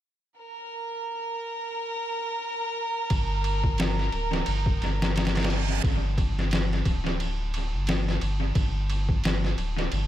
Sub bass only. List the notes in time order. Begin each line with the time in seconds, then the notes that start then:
3.11 G1
4.13 D1
4.47 G1
4.81 G1
5.84 G1
6.86 D1
7.73 G1
8.21 G1
8.56 G1
9.57 D1
9.92 G1